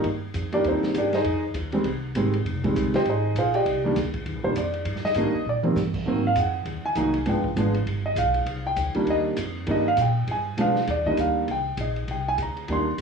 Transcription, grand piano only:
0.53 D#3 G3 A#3 D4 G4 A#4 D5
0.69 C4 D#4 G4 C5
0.98 D4 G4 A#4 D5
1.15 D#4 G#4 C5 D#5
1.73 D#3 G3 G#3 C4
2.15 D#3 G3 G#3 C4
2.63 D#3 G3 G#3 C4
2.95 G4 C5 D#5 G5
3.09 D#4 G#4 C5 D#5
3.38 F4 G#4 C5 F5
3.55 G4 D5 D#5 G5
3.84 D#3 G3 A#3 D4
4.43 D#3 G3 A#3 D4 C5
4.58 D5
5.05 D#5
5.16 D#3 G3 A#3 D4
5.49 D5
5.63 D#3 G3 A#3 C4
6.06 D#3 F#3 A#3 C4
6.27 F5
6.39 F#5
6.86 G#5
6.96 D#3 F#3 A#3 D#4
7.26 F3 G#3 B3 D4 G5
7.57 F3 G#3 B3 D4
8.06 D#5
8.19 F5
8.67 G5
8.95 D#3 G3 A#3 D4
9.10 D#5
9.66 D#3 G3 A#3 D4
9.71 D#5
9.88 F5
10.01 G5
10.31 G#5
10.58 F3 G#3 B3 D4 F5
10.91 D5
11.07 D#3 G3 A#3 D4 D#5
11.20 F5
11.52 G5
11.81 D#5
12.11 G5
12.29 G#5
12.42 A#5
12.69 D#3 G3 A#3 D4 C6

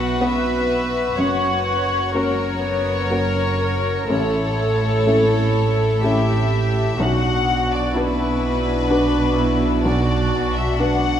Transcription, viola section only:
Already playing: F#4
0.20 B4
1.17 C#5
1.66 C#5
2.14 A#4
2.61 B3
3.10 A#4
3.60 A#4
4.09 A4
6.04 G4
7.01 F#4
7.96 E4
8.89 D4
9.37 E4
9.85 F#4
10.80 D4

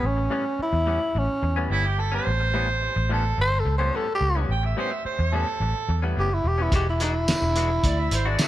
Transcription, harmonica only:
1.72 E4
1.87 G4
2.00 A4
2.15 C5
3.13 A4
4.51 G5
4.65 E5
4.78 C5
4.92 E5
5.05 C5
5.34 A4
7.86 D5
8.00 E5
8.14 C5
8.28 D5
8.42 E5

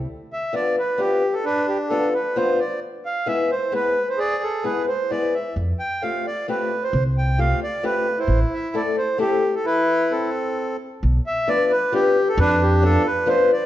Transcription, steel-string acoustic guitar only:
0.53 F3 B3 D4 F4
0.98 F3 B3 D4 F4
1.90 F3 B3 D4 F4
2.36 F3 B3 D4 F4
3.26 G#3 B3 E4 G#4
3.72 G#3 B3 E4 G#4
4.64 G#3 B3 E4 G#4
5.10 G#3 B3 E4 G#4
6.02 A3 C4 F4 G4
6.48 A3 C4 F4 G4
7.38 A3 C4 F4 G4
7.83 A3 C4 F4 G4
8.74 A3 C4 E4 A4
9.18 A3 C4 E4 A4
11.48 F3 B3 D4 F4 B4
11.92 F3 B3 D4 F4 B4
12.82 F3 B3 D4 F4 B4
13.26 F3 B3 D4 F4 B4

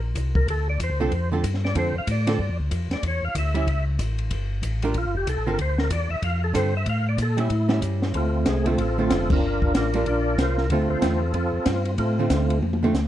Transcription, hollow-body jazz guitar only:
1.00 D3 C4 F4 A4
1.32 D3 C4 F4 A4
1.75 D3 C4 F4 A4
2.27 D3 C4 F4 A4
3.54 G3 C#4 E4
4.83 G3 D4 F4 A#4
5.47 D3 C4 F4 A4
6.54 D3 C4 F4 A4
7.37 G3 C#4 E4
7.69 G3 C#4 E4
8.66 D3 A3 C4 F4
8.98 D3 A3 C4 F4
9.94 G3 D4 F4 A#4
10.71 D3 A3 C4 F4
11.01 D3 A3 C4 F4
12.19 D3 A3 C4 F4
12.83 D3 A3 C4 F4

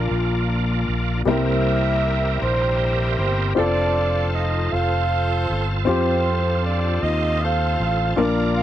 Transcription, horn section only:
Already playing: A#3 D4 F4 A#4
1.28 E4 G4 A#4 E5
2.41 C4 E4 G4 C5
3.17 C4 C5
3.56 D4 F4 A4 D5
4.33 D#4 D#5
4.72 F4 A4 C5 F5
5.88 C4 F4 A4 C5
6.65 D4 D5
7.03 D#4 D#5
7.41 F4 A4 C5 F5
8.18 D4 F4 A#4 D5
8.56 F4 A#4 D5 F5

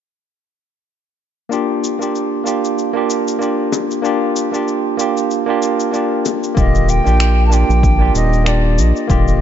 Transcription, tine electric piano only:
1.49 A#3 D4 F4 G4
1.99 A#3 D4 F4 G4
2.44 A#3 D4 F4 G4
2.93 A#3 D4 F4 G4
3.39 A#3 D4 F4 G4
4.02 A#3 D4 F4 G4
4.52 A#3 D4 F4 G4
4.97 A#3 D4 F4 G4
5.46 A#3 D4 F4 G4
5.91 A#3 D4 F4 G4
6.55 D3 A#3 F4 G4
7.04 A#3 D4 F4 G4
7.49 A#3 D4 F4 G4
7.98 A#3 D4 F4 G4
8.44 A#3 D4 F4 G4
9.07 D3 A#3 F4 G4

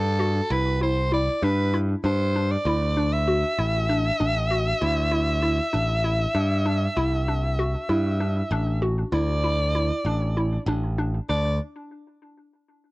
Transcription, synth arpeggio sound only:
Already playing: D4
0.20 F#4
0.50 E4
0.81 E4
1.12 E4
1.43 D4
1.74 E4
2.05 D4
2.36 D4
2.67 E4
2.97 D4
3.28 F#4
3.58 E4
3.89 D4
4.20 D4
4.50 F#4
4.81 E4
5.11 E4
5.42 E4
5.73 D4
6.04 E4
6.35 D4
6.66 D4
6.97 E4
7.28 D4
7.59 F#4
7.89 E4
8.20 D4
8.52 D4
8.82 F#4
9.12 E4
9.44 E4
9.75 E4
10.06 D4
10.37 E4
10.68 D4
10.99 D4
11.29 D4

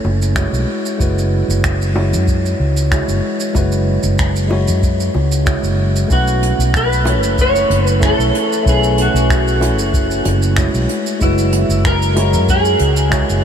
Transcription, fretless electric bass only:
0.04 F#1
0.52 B1
1.00 F#1
1.48 F#1
2.12 F#2
2.59 C#2
3.08 F#1
3.55 F#1
4.03 F#1
4.67 F#2
5.15 C#2
5.63 F#1
6.10 B1
6.58 B1
7.22 F#1
7.70 F#1
8.18 B1
8.66 B1
9.14 B1
9.78 F#1
10.25 F#1
10.74 B1
11.21 F#1
11.69 F#1
12.33 F#2
12.80 C#2
13.29 F#1

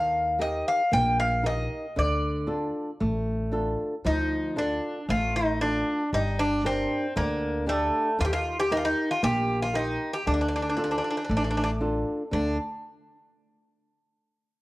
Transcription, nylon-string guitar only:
Already playing: D#3
0.39 D#4 G4 A#4
0.91 A#3
1.43 D#4 G4 A#4
1.96 D3
2.47 D4 F4 A4
3.00 A3
3.52 D4 F4 A4
4.05 F3
4.56 D4 F4 A4
5.09 A3
5.61 D4 F4 A4
6.13 G3
6.64 D4 G4 A#4
7.16 D3
7.66 D4 G4 D5
8.19 D#3
8.71 D#4 G4 A#4
9.23 A#3
9.74 D#4 G4 A#4
10.27 D3
10.77 D4 F4 A4
11.29 A3
11.81 D4 F4 A4
12.31 D3 A3

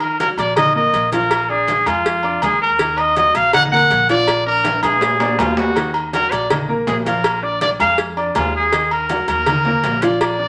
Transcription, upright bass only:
0.37 A#1
0.93 A#1
1.86 F2
2.42 D#2
3.35 A#1
3.90 A#1
4.83 A#2
5.39 D#2
6.31 A#1
6.87 A#1
7.80 F2
8.35 D#2
9.27 D#2
9.84 A#1

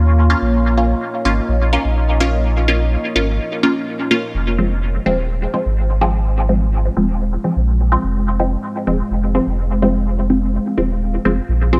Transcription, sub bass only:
Already playing: D#2
0.42 A#1
1.25 G#1
1.49 A#1
1.85 A#1
3.16 G#1
4.35 F1
5.06 D#1
5.66 G#1
6.97 D#1
7.57 A#1
8.04 F1
8.87 D#1
9.11 F1
9.47 F1
10.78 D#1
11.25 F1
11.49 A#1

